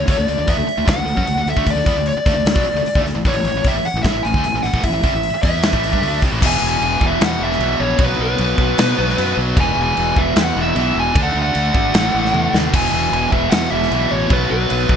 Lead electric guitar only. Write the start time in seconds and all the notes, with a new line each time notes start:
0.10 C#5
0.21 D5
0.50 E5
0.89 F#5
1.50 E5
1.71 D5
2.08 D5
3.27 C#5
3.67 E5
3.86 F#5
4.03 E5
4.23 G#5
4.62 F#5
4.84 E5
5.43 E5
6.46 G#5
6.69 G#5
7.06 E5
7.25 F#5
7.43 E5
7.80 C#5
8.04 B4
8.22 B4
9.61 G#5
9.83 G#5
10.18 E5
10.42 F#5
10.61 E5
11.00 G#5
11.23 F#5
11.42 F#5
12.75 G#5
12.90 G#5
13.32 E5
13.50 F#5
13.70 E5
14.11 C#5
14.32 B4
14.51 B4